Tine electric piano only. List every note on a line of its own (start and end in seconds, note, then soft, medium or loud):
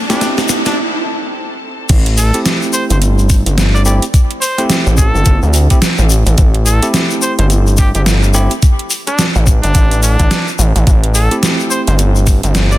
0.10 0.77 A3 medium
0.10 0.77 C4 medium
0.10 0.77 E4 medium
0.10 0.77 G4 loud
2.34 3.83 A3 medium
2.34 3.83 C4 medium
2.34 3.83 E4 medium
2.34 3.83 G4 medium
3.86 4.03 A3 medium
3.86 4.03 C4 medium
3.86 4.03 E4 medium
3.86 4.03 G4 loud
4.58 5.67 A3 loud
4.58 5.67 C4 medium
4.58 5.67 E4 medium
4.58 5.67 G4 loud
5.71 5.78 A3 medium
5.71 5.78 C4 medium
5.71 5.78 E4 medium
5.71 5.78 G4 medium
6.83 8.32 A3 medium
6.83 8.32 C4 medium
6.83 8.32 E4 medium
6.83 8.32 G4 medium
8.34 8.52 A3 loud
8.34 8.52 C4 medium
8.34 8.52 E4 medium
8.34 8.52 G4 loud
11.31 12.78 A3 medium
11.31 12.78 C4 medium
11.31 12.78 E4 medium
11.31 12.78 G4 medium